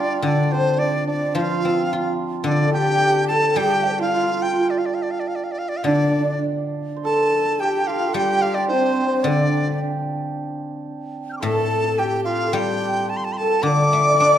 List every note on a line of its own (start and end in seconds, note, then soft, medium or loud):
0.00 0.80 G3 medium
0.00 0.27 D4 medium
0.00 0.19 F4 medium
0.00 0.22 F4 medium
0.00 0.27 F4 medium
0.00 2.28 G4 medium
0.00 0.23 D5 medium
0.20 1.89 D3 medium
0.20 1.35 F4 soft
0.20 0.53 D5 medium
0.26 0.55 D4 medium
0.26 0.78 D4 medium
0.26 0.80 D4 medium
0.52 4.54 C4 medium
0.52 0.80 C5 medium
0.52 0.81 C5 medium
0.79 1.07 D4 medium
0.79 1.39 D4 medium
0.79 1.08 D4 medium
0.79 1.07 D5 medium
1.07 2.47 D4 medium
1.07 1.35 D4 medium
1.07 1.34 D5 medium
1.35 2.99 F3 medium
1.35 1.41 F4 medium
1.35 2.15 F4 medium
1.35 2.19 F4 medium
1.35 2.15 F5 medium
1.42 1.51 F4 soft
1.51 1.59 F4 medium
1.60 1.68 F4 medium
1.65 2.73 C4 soft
1.65 1.72 F4 medium
1.73 1.80 F4 soft
1.80 1.91 F4 medium
1.92 4.00 F4 medium
1.92 3.01 F4 soft
2.44 4.13 D3 medium
2.44 2.65 D4 medium
2.44 5.85 D4 medium
2.44 2.70 D5 medium
2.48 2.72 D4 medium
2.65 2.76 A4 medium
2.65 3.30 A4 medium
2.73 3.32 G4 medium
2.73 3.31 G4 medium
2.73 3.57 G4 medium
2.73 3.25 G5 loud
3.27 3.60 A4 medium
3.27 3.59 A4 medium
3.27 6.23 A4 medium
3.27 3.58 A5 loud
3.56 5.27 G3 medium
3.56 3.82 G4 medium
3.56 6.72 G4 medium
3.56 4.01 G4 medium
3.56 3.99 G5 loud
3.82 3.88 D5 soft
3.82 3.85 F5 soft
3.88 3.92 C5 soft
3.93 4.01 G4 medium
3.93 3.95 A4 soft
4.00 4.71 F4 medium
4.00 4.06 F4 medium
4.00 4.44 F5 medium
4.06 4.14 F4 soft
4.14 4.23 F4 medium
4.23 4.29 F4 medium
4.30 4.36 F4 medium
4.36 4.43 F4 medium
4.42 4.53 F4 medium
4.42 4.71 G5 medium
4.53 7.89 F4 medium
4.70 4.80 D5 medium
4.78 4.87 F5 medium
4.86 4.96 D5 medium
4.94 5.04 F5 medium
5.02 5.12 D5 medium
5.11 5.21 F5 medium
5.20 5.29 D5 medium
5.28 5.37 F5 medium
5.35 5.45 D5 medium
5.44 5.53 F5 medium
5.52 5.60 D5 medium
5.58 5.70 F5 medium
5.69 5.78 D5 medium
5.77 5.86 F5 medium
5.84 7.59 D3 soft
5.84 6.41 D4 medium
5.84 5.95 D4 medium
5.84 6.45 D5 medium
5.95 6.02 D4 medium
6.02 6.10 D4 medium
6.10 6.18 D4 medium
6.19 6.23 D4 medium
6.24 6.32 D4 medium
6.32 8.57 D4 medium
6.96 9.61 C5 medium
7.04 7.61 A4 medium
7.04 9.97 A4 medium
7.04 7.63 A4 medium
7.04 7.62 A5 medium
7.60 7.86 G4 medium
7.60 8.16 G4 medium
7.60 7.89 G5 medium
7.87 8.10 F4 medium
7.87 8.42 F4 medium
7.87 8.15 F5 medium
8.08 8.17 A4 medium
8.14 9.80 G3 medium
8.14 8.60 G4 medium
8.14 9.67 G4 medium
8.14 8.72 G4 medium
8.14 8.43 G5 medium
8.42 11.80 F4 medium
8.42 8.56 F5 medium
8.54 9.24 D4 medium
8.54 8.70 D4 medium
8.54 8.67 D5 medium
8.68 9.26 C4 medium
8.68 9.25 C5 medium
8.68 9.09 C5 medium
8.73 8.80 C4 medium
8.81 8.87 C4 medium
8.87 8.94 C4 medium
8.95 9.01 C4 soft
9.02 9.08 C4 medium
9.08 9.13 C4 medium
9.13 13.14 C4 medium
9.13 9.30 C5 medium
9.23 10.89 D3 medium
9.23 12.97 D4 medium
9.23 9.81 D4 medium
9.23 9.80 D5 medium
9.28 9.82 D4 medium
9.68 11.99 G4 medium
11.30 11.36 F6 soft
11.30 11.32 G6 soft
11.37 11.42 C6 soft
11.37 11.40 D6 soft
11.42 13.09 A2 medium
11.42 11.99 A4 medium
11.42 12.01 A4 medium
11.42 11.84 A4 medium
11.42 12.00 A5 medium
11.84 12.46 A4 medium
11.98 12.53 G4 medium
11.98 12.55 G4 medium
11.98 12.20 G4 medium
11.98 12.23 G5 medium
12.20 12.28 G4 medium
12.24 14.38 F4 medium
12.24 12.45 F4 medium
12.24 12.55 F5 medium
12.46 12.55 A4 medium
12.46 13.42 A4 medium
12.53 14.21 G3 medium
12.53 13.09 G4 medium
12.53 14.38 G4 medium
12.53 13.07 G4 medium
12.53 13.11 G5 medium
13.09 13.18 A5 medium
13.17 13.26 C6 medium
13.24 13.34 A5 medium
13.33 13.39 C6 medium
13.37 13.63 A4 medium
13.37 13.68 A4 medium
13.37 13.64 A5 medium
13.42 14.38 A4 medium
13.63 14.38 D3 medium
13.63 14.38 D5 medium
13.63 14.38 D6 loud
13.67 14.38 D5 medium
13.93 14.38 A3 soft
14.20 14.38 D4 soft